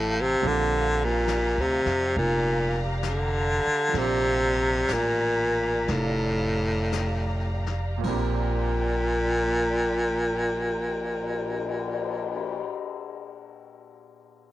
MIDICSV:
0, 0, Header, 1, 8, 480
1, 0, Start_track
1, 0, Key_signature, -2, "major"
1, 0, Tempo, 865801
1, 232, Time_signature, 4, 2, 24, 8
1, 1677, Tempo, 930233
1, 2637, Tempo, 995025
1, 3117, Tempo, 1048951
1, 3597, Tempo, 1113173
1, 4077, Tempo, 1147228
1, 6787, End_track
2, 0, Start_track
2, 0, Title_t, "String section"
2, 0, Program_c, 0, 48
2, 0, Note_on_c, 0, 67, 66
2, 0, Note_on_c, 0, 77, 64
2, 0, Note_on_c, 0, 79, 56
2, 0, Note_on_c, 0, 81, 82
2, 213, Note_off_c, 0, 79, 0
2, 214, Note_off_c, 0, 81, 0
2, 229, Note_on_c, 0, 74, 68
2, 232, Note_on_c, 0, 82, 76
2, 4058, Note_off_c, 0, 74, 0
2, 4058, Note_off_c, 0, 77, 0
2, 4059, Note_off_c, 0, 82, 0
2, 4062, Note_off_c, 0, 67, 0
2, 4081, Note_on_c, 0, 65, 62
2, 4086, Note_on_c, 0, 79, 74
2, 4087, Note_on_c, 0, 70, 64
2, 4088, Note_on_c, 0, 74, 62
2, 5994, Note_off_c, 0, 65, 0
2, 5999, Note_off_c, 0, 70, 0
2, 5999, Note_off_c, 0, 79, 0
2, 6000, Note_off_c, 0, 74, 0
2, 6787, End_track
3, 0, Start_track
3, 0, Title_t, "Grand piano"
3, 0, Program_c, 1, 0
3, 0, Control_c, 1, 64, 127
3, 0, Note_on_c, 1, 53, 47
3, 0, Note_on_c, 1, 57, 46
3, 0, Note_on_c, 1, 60, 45
3, 0, Note_on_c, 1, 67, 54
3, 0, Note_on_c, 1, 75, 47
3, 223, Note_off_c, 1, 53, 0
3, 227, Note_off_c, 1, 60, 0
3, 229, Note_off_c, 1, 67, 0
3, 231, Note_on_c, 1, 53, 57
3, 232, Note_off_c, 1, 57, 0
3, 233, Note_on_c, 1, 58, 53
3, 235, Note_off_c, 1, 75, 0
3, 236, Note_on_c, 1, 60, 54
3, 236, Note_on_c, 1, 62, 56
3, 238, Control_c, 1, 64, 0
3, 238, Note_on_c, 1, 67, 62
3, 324, Control_c, 1, 64, 127
3, 2114, Note_off_c, 1, 53, 0
3, 2122, Note_on_c, 1, 53, 49
3, 2136, Note_on_c, 1, 70, 45
3, 2143, Note_off_c, 1, 60, 0
3, 2147, Note_off_c, 1, 58, 0
3, 2149, Note_off_c, 1, 62, 0
3, 2149, Note_off_c, 1, 67, 0
3, 2150, Note_on_c, 1, 60, 43
3, 2164, Note_on_c, 1, 62, 45
3, 2178, Note_on_c, 1, 67, 57
3, 4049, Note_on_c, 1, 46, 59
3, 4062, Note_on_c, 1, 58, 55
3, 4066, Note_off_c, 1, 53, 0
3, 4067, Note_off_c, 1, 60, 0
3, 4072, Note_off_c, 1, 70, 0
3, 4073, Note_on_c, 1, 60, 53
3, 4082, Note_off_c, 1, 62, 0
3, 4083, Control_c, 1, 64, 0
3, 4088, Note_on_c, 1, 62, 55
3, 4090, Note_off_c, 1, 67, 0
3, 4100, Note_on_c, 1, 67, 59
3, 4148, Control_c, 1, 64, 127
3, 5979, Note_off_c, 1, 46, 0
3, 5992, Note_off_c, 1, 58, 0
3, 6003, Note_off_c, 1, 60, 0
3, 6017, Note_off_c, 1, 62, 0
3, 6030, Note_off_c, 1, 67, 0
3, 6787, End_track
4, 0, Start_track
4, 0, Title_t, "Baritone saxophone"
4, 0, Program_c, 2, 67
4, 0, Note_on_c, 2, 45, 72
4, 117, Note_on_c, 2, 48, 91
4, 125, Note_off_c, 2, 45, 0
4, 260, Note_on_c, 2, 50, 93
4, 268, Note_off_c, 2, 48, 0
4, 577, Note_on_c, 2, 46, 84
4, 586, Note_off_c, 2, 50, 0
4, 893, Note_on_c, 2, 48, 88
4, 901, Note_off_c, 2, 46, 0
4, 1199, Note_off_c, 2, 48, 0
4, 1211, Note_on_c, 2, 46, 83
4, 1567, Note_off_c, 2, 46, 0
4, 1711, Note_on_c, 2, 50, 75
4, 2169, Note_on_c, 2, 48, 91
4, 2177, Note_off_c, 2, 50, 0
4, 2660, Note_on_c, 2, 46, 85
4, 2667, Note_off_c, 2, 48, 0
4, 3129, Note_on_c, 2, 45, 73
4, 3136, Note_off_c, 2, 46, 0
4, 3928, Note_off_c, 2, 45, 0
4, 4092, Note_on_c, 2, 46, 78
4, 6004, Note_off_c, 2, 46, 0
4, 6787, End_track
5, 0, Start_track
5, 0, Title_t, "Upright bass"
5, 0, Program_c, 3, 32
5, 0, Note_on_c, 3, 33, 80
5, 210, Note_off_c, 3, 33, 0
5, 239, Note_on_c, 3, 34, 80
5, 846, Note_off_c, 3, 34, 0
5, 873, Note_on_c, 3, 38, 52
5, 1018, Note_off_c, 3, 38, 0
5, 1030, Note_on_c, 3, 41, 62
5, 1177, Note_off_c, 3, 41, 0
5, 1198, Note_on_c, 3, 29, 86
5, 1981, Note_off_c, 3, 29, 0
5, 2149, Note_on_c, 3, 34, 73
5, 2617, Note_off_c, 3, 34, 0
5, 2638, Note_on_c, 3, 33, 69
5, 3098, Note_off_c, 3, 33, 0
5, 3118, Note_on_c, 3, 29, 78
5, 4061, Note_off_c, 3, 29, 0
5, 4077, Note_on_c, 3, 34, 83
5, 5989, Note_off_c, 3, 34, 0
5, 6787, End_track
6, 0, Start_track
6, 0, Title_t, "Cymbal swell"
6, 4405, Note_on_c, 9, 59, 41
6, 5903, Note_off_c, 9, 59, 0
6, 6787, End_track
7, 0, Start_track
7, 0, Title_t, "Muted upright bass strokes"
7, 2004, Note_on_c, 9, 29, 35
7, 2056, Note_off_c, 9, 29, 0
7, 6787, End_track
8, 0, Start_track
8, 0, Title_t, "Drums"
8, 232, Note_on_c, 9, 25, 35
8, 707, Note_on_c, 9, 38, 41
8, 707, Note_on_c, 9, 44, 50
8, 763, Note_off_c, 9, 38, 0
8, 763, Note_off_c, 9, 44, 0
8, 1029, Note_on_c, 9, 38, 26
8, 1085, Note_off_c, 9, 38, 0
8, 1191, Note_off_c, 9, 25, 0
8, 1191, Note_on_c, 9, 25, 34
8, 1678, Note_on_c, 9, 38, 43
8, 1678, Note_on_c, 9, 44, 58
8, 1730, Note_off_c, 9, 38, 0
8, 1730, Note_off_c, 9, 44, 0
8, 2147, Note_off_c, 9, 25, 0
8, 2147, Note_on_c, 9, 25, 36
8, 2147, Note_on_c, 9, 38, 28
8, 2198, Note_off_c, 9, 38, 0
8, 2636, Note_on_c, 9, 38, 39
8, 2636, Note_on_c, 9, 44, 56
8, 2684, Note_off_c, 9, 38, 0
8, 2684, Note_off_c, 9, 44, 0
8, 3115, Note_off_c, 9, 25, 0
8, 3115, Note_on_c, 9, 25, 34
8, 3115, Note_on_c, 9, 38, 29
8, 3161, Note_off_c, 9, 38, 0
8, 3594, Note_on_c, 9, 38, 45
8, 3594, Note_on_c, 9, 44, 62
8, 3637, Note_off_c, 9, 38, 0
8, 3637, Note_off_c, 9, 44, 0
8, 3913, Note_on_c, 9, 38, 24
8, 3956, Note_off_c, 9, 38, 0
8, 4074, Note_on_c, 9, 49, 59
8, 4075, Note_on_c, 9, 36, 54
8, 4116, Note_off_c, 9, 49, 0
8, 4117, Note_off_c, 9, 36, 0
8, 4465, Note_off_c, 9, 25, 0
8, 6787, End_track
0, 0, End_of_file